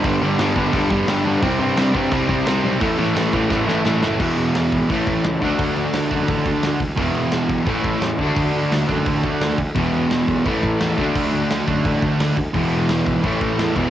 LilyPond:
<<
  \new Staff \with { instrumentName = "Distorted electric guitar" } { \time 4/4 \key g \lydian \tempo 4 = 172 <g, d g b d'>8 <g, d g b d'>8 <g, d g b d'>8 <g, d g b d'>8 <g, d g b d'>8 <g, d g b d'>8 <g, d g b d'>8 <g, d g b d'>8 | <c g c' e'>8 <c g c' e'>8 <c g c' e'>8 <c g c' e'>8 <c g c' e'>8 <c g c' e'>8 <c g c' e'>8 <c g c' e'>8 | <a, e a cis' e'>8 <a, e a cis' e'>8 <a, e a cis' e'>8 <a, e a cis' e'>8 <a, e a cis' e'>8 <a, e a cis' e'>8 <a, e a cis' e'>8 <a, e a cis' e'>8 | \key d \lydian <e gis b e'>2 <a, e a cis' e'>4. <d a d' fis'>8~ |
<d a d' fis'>2 <d a d' fis'>8 <d a d' fis'>4 r8 | <e gis b e'>2 <a, e a cis' e'>4. <d a d' fis'>8~ | <d a d' fis'>2 <d a d' fis'>8 <d a d' fis'>4 r8 | <e gis b e'>2 <a, e a cis' e'>4. <d a d' fis'>8~ |
<d a d' fis'>2 <d a d' fis'>8 <d a d' fis'>4 r8 | <e gis b e'>2 <a, e a cis' e'>4. <e gis b e'>8 | }
  \new Staff \with { instrumentName = "Distorted electric guitar" } { \clef bass \time 4/4 \key g \lydian <g, d g>8 <g, d g>8 <g, d g>8 <g, d g>8 <g, d g>8 <g, d g>8 <g, d g>8 <g, d g>8 | <c g c'>8 <c g c'>8 <c g c'>8 <c g c'>8 <c g c'>8 <c g c'>8 <c g c'>8 <c g c'>8 | <a, e a>8 <a, e a>8 <a, e a>8 <a, e a>8 <a, e a>8 <a, e a>8 <a, e a>8 <a, e a>8 | \key d \lydian <e, b, e>2 <a, e a>4. <d a d'>8~ |
<d a d'>4. <d a d'>2 r8 | <e, b, e>2 <a, e a>4. <d a d'>8~ | <d a d'>4. <d a d'>2 r8 | <e, b, e>2 <a, e a>4. <d a d'>8~ |
<d a d'>4. <d a d'>2 r8 | <e, b, e>2 <a, e a>4. <e, b, e>8 | }
  \new Staff \with { instrumentName = "Overdriven electric guitar" } { \clef bass \time 4/4 \key g \lydian <g, d g>8 <g, d g>8 <g, d g>8 <g, d g>8 <g, d g>8 <g, d g>8 <g, d g>8 <g, d g>8 | <c g c'>8 <c g c'>8 <c g c'>8 <c g c'>8 <c g c'>8 <c g c'>8 <c g c'>8 <c g c'>8 | <a, e a>8 <a, e a>8 <a, e a>8 <a, e a>8 <a, e a>8 <a, e a>8 <a, e a>8 <a, e a>8 | \key d \lydian <e, b, e>2 <a, e a>4. <d a d'>8~ |
<d a d'>2.~ <d a d'>8 r8 | <e, b, e>2 <a, e a>4. <d a d'>8~ | <d a d'>2.~ <d a d'>8 r8 | <e, b, e>2 <a, e a>4. <d a d'>8~ |
<d a d'>2.~ <d a d'>8 r8 | <e, b, e>2 <a, e a>4. <e, b, e>8 | }
  \new Staff \with { instrumentName = "Picked electric bass" } { \clef bass \time 4/4 \key g \lydian g,,8 g,,8 g,,8 g,,8 g,,8 g,,8 g,,8 g,8 | c,8 g,8 g,8 g,8 c,8 c,8 c,8 b,,8 | a,,8 a,,8 a,,8 a,,8 a,,8 a,,8 a,,8 fis,,8 | \key d \lydian e,,8 e,,8 e,,8 gis,,8 a,,8 a,8 cis,8 d,8 |
d,8 d,8 d,8 fis,8 a,,8 d,8 d,8 d,8 | e,,8 e,,8 e,,8 b,,8 a,,8 a,8 e,8 d,8 | d,8 d,8 d,8 fis,8 a,,8 d,8 d,8 d,8 | e,,8 e,,8 e,,8 b,,8 a,,8 a,8 e,8 d,8 |
d,8 d,8 d,8 fis,8 a,,8 d,8 d,8 d,8 | e,,8 e,,8 e,,8 gis,,8 a,,8 a,8 e,8 e,,8 | }
  \new DrumStaff \with { instrumentName = "Drums" } \drummode { \time 4/4 <hho bd>4 <hho sn>8 bd8 <hho bd>8 bd8 <hho sn>4 | <hho bd>4 <hho sn>8 bd8 <hho bd>8 bd8 <hho sn>4 | <hho bd>4 <hho sn>8 bd8 <bd sn>8 sn8 sn8 sn8 | <cymc bd>8 cymc8 <cymc sn>8 <cymc bd>8 <cymc bd>8 <cymc bd>8 <cymc sn>8 <cymc bd>8 |
<cymc bd>8 cymc8 <cymc sn>8 <cymc bd>8 <cymc bd>8 <cymc bd>8 <cymc sn>8 <cymc bd>8 | <cymc bd>8 cymc8 <cymc sn>8 <cymc bd>8 <cymc bd>8 <cymc bd>8 <cymc sn>8 <cymc bd>8 | <cymc bd>8 cymc8 <cymc sn>8 <cymc bd>8 <cymc bd>8 <cymc bd>8 <cymc sn>8 <cymc bd>8 | <cymc bd>8 cymc8 <cymc sn>8 <cymc bd>8 <cymc bd>8 <cymc bd>8 <cymc sn>8 <cymc bd>8 |
<cymc bd>8 cymc8 <cymc sn>8 <cymc bd>8 <cymc bd>8 <cymc bd>8 <cymc sn>8 <cymc bd>8 | <cymc bd>8 cymc8 <cymc sn>8 <cymc bd>8 <cymc bd>8 <cymc bd>8 <cymc sn>8 <cymc bd>8 | }
>>